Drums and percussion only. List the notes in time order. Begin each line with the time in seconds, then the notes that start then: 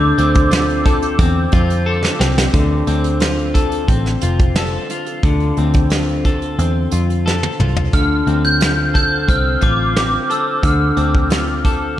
0.18 closed hi-hat
0.35 kick, closed hi-hat
0.51 snare, closed hi-hat
0.70 closed hi-hat
0.86 kick, closed hi-hat
1.02 closed hi-hat
1.19 kick, closed hi-hat
1.52 kick, closed hi-hat
1.70 closed hi-hat
2.05 snare
2.21 snare
2.38 snare
2.54 kick, closed hi-hat
2.87 closed hi-hat
3.04 closed hi-hat
3.20 snare, closed hi-hat
3.39 closed hi-hat
3.55 kick, closed hi-hat
3.72 closed hi-hat
3.88 kick, closed hi-hat
4.06 snare
4.21 closed hi-hat
4.39 kick, closed hi-hat
4.55 snare, closed hi-hat
4.90 closed hi-hat
5.06 closed hi-hat
5.23 kick, closed hi-hat
5.40 closed hi-hat
5.57 closed hi-hat
5.74 kick, closed hi-hat
5.90 snare, closed hi-hat
6.09 closed hi-hat
6.25 kick, closed hi-hat
6.42 closed hi-hat
6.59 closed hi-hat
6.91 closed hi-hat
7.10 closed hi-hat
7.27 snare
7.43 high tom
7.60 mid tom
7.76 floor tom
7.93 kick, closed hi-hat
8.27 closed hi-hat
8.61 snare, closed hi-hat
8.95 kick, closed hi-hat
9.29 kick, closed hi-hat
9.61 kick, closed hi-hat
9.96 snare, closed hi-hat
10.30 closed hi-hat
10.63 kick, closed hi-hat
10.97 closed hi-hat
11.15 kick
11.30 snare, closed hi-hat
11.65 kick, closed hi-hat